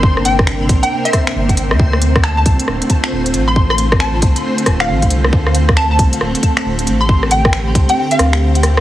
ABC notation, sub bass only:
X:1
M:4/4
L:1/16
Q:"Swing 16ths" 1/4=136
K:Dm
V:1 name="Sub bass" clef=bass
G,,,6 B,,, z4 z G,,,3 E,, | D,,6 C,, z D,,, z3 D,,,2 A,,,2- | A,,,6 C,, z3 D,,,2 A,,,2 C,,2 | D,,6 C,, z D,,, z3 D,,,2 A,,,2- |
A,,,6 C,, z3 D,,6 |]